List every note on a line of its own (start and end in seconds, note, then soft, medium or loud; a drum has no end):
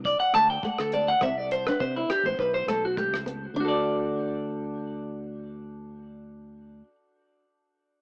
0.00 0.14 C2 medium
0.00 0.14 B3 medium
0.05 0.19 D5 medium
0.05 kick medium
0.20 0.33 F#5 medium
0.34 0.57 D2 medium
0.34 0.57 A3 medium
0.34 0.49 A5 loud
0.34 cross-stick medium
0.34 closed hi-hat soft
0.50 0.64 G5 medium
0.63 0.87 A3 medium
0.63 0.78 F#5 medium
0.63 kick medium
0.79 1.13 D2 medium
0.79 0.93 A4 medium
0.79 cross-stick medium
0.92 1.16 B3 medium
0.92 1.08 D5 medium
0.92 closed hi-hat soft
1.08 1.21 F#5 loud
1.21 1.69 C2 medium
1.21 1.44 C4 medium
1.21 1.38 E5 medium
1.21 kick medium
1.21 cross-stick medium
1.38 1.51 D5 medium
1.51 1.66 C5 medium
1.51 closed hi-hat soft
1.67 1.90 D4 medium
1.67 1.80 B4 medium
1.67 cross-stick medium
1.80 2.03 C3 medium
1.80 1.95 C5 medium
1.80 kick medium
1.96 2.19 C4 medium
1.96 2.09 E4 soft
2.10 2.24 G4 medium
2.10 cross-stick medium
2.10 closed hi-hat soft
2.23 2.35 A1 medium
2.23 2.48 B3 medium
2.23 2.39 C5 medium
2.39 2.62 B1 medium
2.39 2.54 B4 medium
2.39 kick medium
2.54 2.67 C5 medium
2.66 3.11 B1 medium
2.66 2.91 A3 medium
2.66 2.83 A4 medium
2.66 cross-stick medium
2.66 closed hi-hat soft
2.85 2.97 F#4 medium
2.97 3.20 A3 medium
2.97 3.15 G4 medium
2.97 kick medium
3.11 3.46 C#2 medium
3.11 cross-stick medium
3.26 3.49 B3 medium
3.26 closed hi-hat soft
3.54 6.81 D2 medium
3.54 3.73 D4 medium
3.54 6.83 D4 medium
3.60 6.87 F#4 medium
3.65 6.92 A4 medium
3.65 6.95 D5 medium